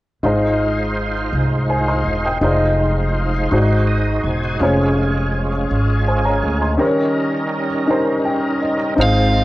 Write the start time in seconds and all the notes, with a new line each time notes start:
0.23 G#1 G#2 G#3 D#4 F4 G#4 C5 D#5
1.33 C2
1.70 C5 G#5
1.88 D#5 C6
2.05 E1
2.25 G5 D#6
2.41 F1 G#3 D#4 F4 G#4 C5 D5
2.51 D#5
3.51 G#1 G#2 G#3 D#4 F#4 G#4 C5 D5
3.61 D#5
3.87 D#5
4.23 E1 G#5
4.60 F1 G#3 C#4 F4 G#4 C5
4.64 C#5
5.71 G#1
6.08 C5 G#5
6.25 C#5 A#5
6.43 D2
6.62 D#5 C6
6.77 D#3 F#3 C#4 D#4 G4 A#4 C5
6.86 G3 C#5
7.86 C#4 D#4 G4 A#4
7.91 C5
8.25 G5
8.62 D#5
8.96 G#1 G#2 G#3 C4 D#4 F4 G#4 C5
9.00 G#3 F4 C5 F5